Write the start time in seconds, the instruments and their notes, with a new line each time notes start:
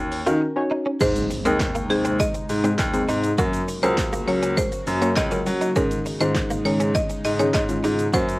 Already playing: grand piano D#2, marimba C#5
0.12 open hi-hat, shaker
0.26 grand piano D#3, synth pluck C#4 D#4 F#4 A#4, clean electric guitar F4, closed hi-hat, shaker
0.41 muted clean electric guitar stroke
0.56 synth pluck C#4 D#4 F#4 C#5
0.71 clean electric guitar D#4
0.86 clean electric guitar C#4
1.00 grand piano G#2, analog synth pad C3 G#3 D#4, synth pluck G#3 C4 D#4 G#4 C5, clean electric guitar G#3, marimba C5, kick, crash, impact, shaker
1.16 closed hi-hat, shaker
1.30 muted clean electric guitar stroke, open hi-hat, shaker
1.45 grand piano D#2, synth pluck G#3 C4 D#4 G#4 D#5, clean electric guitar C4, marimba A#4, closed hi-hat, shaker
1.59 kick, snare, clap, shaker
1.75 clean electric guitar A#3, closed hi-hat, shaker
1.90 synth pluck G#3 C4 D#4 G#4 C5, marimba G#4, muted clean electric guitar stroke, open hi-hat, shaker
2.05 clean electric guitar C4, closed hi-hat, shaker
2.19 clean electric guitar G#3, marimba D#5, kick, shaker
2.34 muted clean electric guitar stroke, closed hi-hat, shaker
2.49 grand piano G#2, open hi-hat, shaker
2.64 synth pluck G#3 C4 D#4 G#4 C5, clean electric guitar C4, closed hi-hat, shaker
2.78 grand piano D#2, kick, snare, clap, shaker
2.94 synth pluck G#3 C4 D#4 G#4 C5, closed hi-hat, shaker
3.09 grand piano G#2, clean electric guitar D#4, open hi-hat, shaker
3.24 closed hi-hat, shaker
3.38 grand piano F#2, analog synth pad C#3 A#3 F#4, synth pluck F#3 A#3 C#4 F#4 A#4, clean electric guitar F#4, marimba A#4, kick, shaker
3.53 closed hi-hat, shaker
3.68 muted clean electric guitar stroke, open hi-hat, shaker
3.83 grand piano C#2, synth pluck F#3 A#3 C#4 F#4 A#4, clean electric guitar C#4, marimba C5, closed hi-hat, shaker
3.97 kick, snare, clap, shaker
4.13 clean electric guitar A#3, closed hi-hat, shaker
4.27 synth pluck F#3 A#3 C#4 F#4 A#4, marimba C#5, muted clean electric guitar stroke, open hi-hat, shaker
4.42 clean electric guitar C#4, closed hi-hat, shaker
4.57 clean electric guitar G#3, marimba C5, kick, shaker
4.72 muted clean electric guitar stroke, closed hi-hat, shaker
4.87 grand piano F#2, open hi-hat, shaker
5.02 synth pluck F#3 A#3 C#4 F#4 A#4, clean electric guitar A#3, marimba C#5, closed hi-hat, shaker
5.16 grand piano C#2, marimba D#5, kick, snare, clap, shaker
5.31 synth pluck F#3 A#3 C#4 F#4 A#4, clean electric guitar C#4, closed hi-hat, shaker
5.46 grand piano F#3, muted clean electric guitar stroke, open hi-hat, shaker
5.61 clean electric guitar D#4, closed hi-hat, shaker
5.76 grand piano G#2, synth pluck D#3 G#3 C#4 D#4 G#4, analog synth pad G#3 D#4, clean electric guitar C#4, marimba A#4, kick, shaker
5.91 closed hi-hat, shaker
6.06 muted clean electric guitar stroke, open hi-hat, shaker
6.20 grand piano G#2, synth pluck D#3 G#3 C#4 D#4 F4, clean electric guitar D#4, marimba C5, closed hi-hat, shaker
6.35 kick, snare, clap, shaker
6.50 clean electric guitar A#3, closed hi-hat, shaker
6.65 synth pluck D#3 G#3 C#4 D#4 G#4, marimba C#5, muted clean electric guitar stroke, open hi-hat, shaker
6.80 clean electric guitar C#4, closed hi-hat, shaker
6.95 clean electric guitar G#3, marimba D#5, kick, shaker
7.09 muted clean electric guitar stroke, closed hi-hat, shaker
7.25 grand piano G#2, marimba D#5, open hi-hat, shaker
7.39 synth pluck D#3 G#3 C#4 D#4 G#4, clean electric guitar C#4, marimba C#5, closed hi-hat, shaker
7.53 grand piano G#2, marimba D#5, kick, snare, clap, shaker
7.69 synth pluck D#3 G#3 C#4 D#4 F4, closed hi-hat, shaker
7.84 grand piano G#2, clean electric guitar D#4, open hi-hat, shaker
7.99 closed hi-hat, shaker
8.13 grand piano F#2, synth pluck F#3 A#3 C#4 F#4 A#4, analog synth pad A#3 F#4, clean electric guitar F#4, marimba C5, kick, shaker
8.29 closed hi-hat, shaker